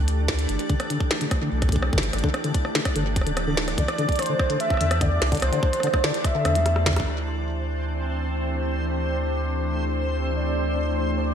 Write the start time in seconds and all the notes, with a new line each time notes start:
Already playing: D2 E3 A3 D4 G4 A4 D5
0.08 closed hi-hat
0.28 kick, snare
0.39 closed hi-hat
0.49 G1 E3, closed hi-hat
0.59 closed hi-hat
0.70 D3, kick, closed hi-hat
0.80 cross-stick, closed hi-hat
0.90 D3, closed hi-hat
1.00 kick
1.11 snare
1.21 D3, closed hi-hat
1.31 kick, cross-stick, closed hi-hat
1.42 D3
1.52 B1
1.62 kick, cross-stick, closed hi-hat
1.69 D3, kick, closed hi-hat
1.76 kick
1.82 cross-stick
1.93 G1 D3, kick
1.98 snare
2.03 closed hi-hat
2.13 G1, cross-stick, closed hi-hat
2.19 closed hi-hat
2.24 D3, kick
2.34 cross-stick, closed hi-hat
2.44 D3, closed hi-hat
2.55 kick, closed hi-hat
2.65 cross-stick
2.75 D3, snare
2.85 kick, cross-stick, closed hi-hat
2.96 G1 D3, closed hi-hat
3.16 D1, kick, closed hi-hat
3.21 cross-stick
3.27 D3, closed hi-hat
3.37 cross-stick, closed hi-hat
3.47 D3
3.57 snare
3.68 cross-stick, closed hi-hat
3.78 C2 D3 D5, kick, closed hi-hat
3.88 cross-stick, closed hi-hat
3.98 D3, closed hi-hat
4.09 kick, closed hi-hat
4.12 closed hi-hat
4.16 cross-stick, closed hi-hat
4.19 C5, closed hi-hat
4.22 closed hi-hat
4.26 D3, closed hi-hat
4.40 kick, cross-stick
4.50 D3, closed hi-hat
4.60 E5, closed hi-hat
4.70 kick, cross-stick
4.74 cross-stick
4.77 E2 D3, cross-stick, closed hi-hat
4.91 cross-stick, closed hi-hat
5.01 D3 D5, kick, closed hi-hat
5.22 C2, cross-stick, snare
5.26 C5
5.32 D3, kick, closed hi-hat
5.35 closed hi-hat
5.37 closed hi-hat
5.40 C2, cross-stick, closed hi-hat
5.42 C5, closed hi-hat
5.52 D3, closed hi-hat
5.63 kick
5.73 cross-stick, closed hi-hat
5.80 D3, cross-stick, closed hi-hat
5.87 cross-stick
5.94 kick, cross-stick
6.04 D3 D5, snare
6.14 closed hi-hat
6.24 E5, kick, cross-stick, closed hi-hat
6.35 D3
6.45 E2, cross-stick, closed hi-hat
6.55 A3, closed hi-hat
6.66 cross-stick, closed hi-hat
6.76 cross-stick
6.86 D3, kick, cross-stick, snare, closed hi-hat
6.93 kick, cross-stick, closed hi-hat
7.00 kick
7.07 D2 C4 C5
7.53 A3
7.58 G4
7.99 D4
10.36 D5
10.97 C5
11.18 D5